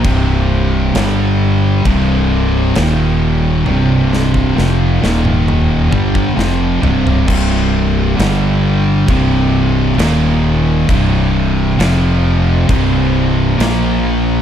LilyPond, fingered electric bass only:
\new Staff \with { instrumentName = "Fingered electric bass" } { \clef bass \time 4/4 \key c \minor \tempo 4 = 66 c,,4 g,,4 c,,4 ees,,4 | c,,4 f,,8 ees,,4 g,,8 f,,8 c,,8 | c,,4 g,,4 c,,4 ees,,4 | c,,4 f,,4 c,,4 bes,,4 | }